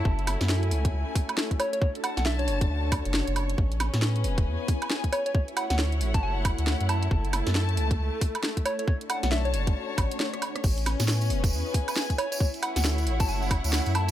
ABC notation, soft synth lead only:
X:1
M:4/4
L:1/16
Q:"Swing 16ths" 1/4=136
K:Dlyd
V:1 name="Soft synth lead"
a4 z8 z2 c c | c z f f e c c z8 z | z12 z2 c c | c z f f z3 a a2 z4 a2- |
a4 z8 z2 c c | c z f f e c c z8 z | z12 z2 c c | c z f f z3 a a2 z4 a2 |]